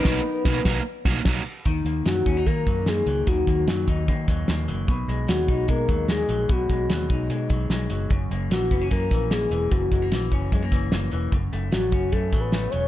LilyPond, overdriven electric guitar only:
\new Staff \with { instrumentName = "Overdriven electric guitar" } { \time 4/4 \key b \major \tempo 4 = 149 <b, fis ais dis' fis'>8 r8 <b, fis ais dis' fis'>8 <ais dis' fis'>8 r8 <ais dis' fis'>8 <b, fis ais dis' fis'>8 r8 | r1 | r1 | r1 |
r1 | r1 | r1 | r1 | }